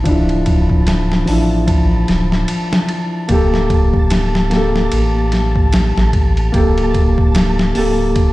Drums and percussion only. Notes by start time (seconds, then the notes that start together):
0.06 kick, ride
0.29 ride
0.46 kick, ride
0.70 kick
0.87 snare, ride
1.12 snare
1.27 open hi-hat
1.68 kick, ride
2.08 snare, ride
2.32 snare
2.48 ride
2.73 snare
2.89 ride
3.29 kick, ride
3.54 snare
3.70 kick, ride
3.94 kick
4.10 snare, ride
4.35 snare
4.51 snare, ride
4.76 snare
4.92 ride
5.32 snare, ride
5.56 kick
5.73 snare, ride
5.98 snare
6.13 kick, ride
6.37 ride
6.54 kick, ride
6.78 ride
6.95 kick, ride
7.18 kick
7.35 snare, ride
7.59 snare
7.75 open hi-hat
8.16 kick, ride